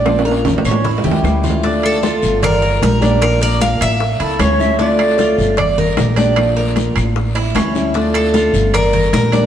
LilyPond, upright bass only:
\new Staff \with { instrumentName = "Upright bass" } { \clef bass \time 4/4 \key d \minor \tempo 4 = 152 bes,,4. a,,4 cis,8 d,4~ | d,4. g,,4. bes,,4~ | bes,,4. a,,4 cis,8 d,4~ | d,4. g,,4. bes,,4~ |
bes,,4. a,,4. d,4~ | d,4. g,,4. bes,,4 | }